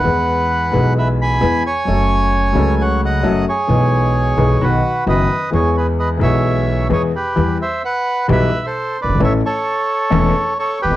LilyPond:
<<
  \new Staff \with { instrumentName = "Bandoneon" } { \time 4/4 \key e \major \tempo 4 = 131 <b' fis''>2 <b' e''>8 <gis'' b''>4 <cis'' gis''>8~ | <cis'' gis''>2 <cis'' fis''>8 <dis'' fis''>4 <gis' cis''>8~ | <gis' cis''>2 <fis' b'>4 <b' dis''>4 | <gis' cis''>8 <gis' b'>8 <b' dis''>8 <cis'' e''>4. <gis' cis''>8 <g' b'>8~ |
\key e \minor <g' b'>8 <c'' e''>8 <b' fis''>4 <b' e''>8. <a' c''>8. <b' d''>8 | <cis'' e''>8 <a' cis''>2~ <a' cis''>8 <a' cis''>8 <g' b'>8 | }
  \new Staff \with { instrumentName = "Grand piano" } { \clef bass \time 4/4 \key e \major <e, e gis b gis'>4. <b,, b, e gis b gis'>4. <e, e gis b gis'>8 r8 | <fis, fis a cis' a'>4. <cis, cis fis a cis' a'>4. <fis, fis a cis' a'>8 r8 | <b,, b, e gis b gis'>4. <b,, b, e gis b gis'>8 <b,, b, dis fis b fis'>8 r8 <fis,, fis, dis fis b fis'>8 r8 | <e, e gis b gis'>4. <b,, b, e gis b gis'>4. <e, e gis b gis'>8 r8 |
\key e \minor <e, e g b g'>8 r4. <b,, b, e g b g'>8 r4 r32 fis,,32 g,,32 gis,,32 | <a,, a, e a cis' a'>8 r4. <e,, e, e a cis' a'>8 r4 r32 e,32 f,32 r32 | }
  \new Staff \with { instrumentName = "Upright bass" } { \clef bass \time 4/4 \key e \major e,4~ e,16. r32 b,,4~ b,,16. r32 e,16. r8 r32 | fis,,4~ fis,,16. r32 cis,4~ cis,16. r32 fis,,16. r8 r32 | b,,4~ b,,16. r32 b,,16. r32 b,,16. r8 r32 fis,,16. r8 r32 | e,4~ e,16. r32 b,,4~ b,,16. r32 e,16. r8 r32 |
\key e \minor e,16. r4. r32 b,,16. r4 r16 fis,,32 g,,32 gis,,32 | a,,16. r4. r32 e,,16. r4 r16 e,,32 f,,32 r32 | }
>>